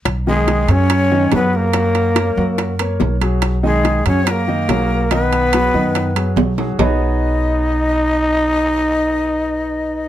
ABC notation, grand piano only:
X:1
M:4/4
L:1/8
Q:1/4=143
K:B
V:1 name="Grand piano"
z [D,Dd]2 [F,FG]2 [D,Dd] [F,FG]2 | [F,Ff]2 [A,Ac] [F,Ff]2 [A,Ac]2 [F,FG]- | [F,FG] [D,Dd]2 [F,FG]2 [D,Dd] [F,FG]2 | [D,Dd]2 [F,FG] [D,Dd]2 [F,FG]2 [F,FG] |
[B,FGBcd]8- | [B,FGBcd]8 |]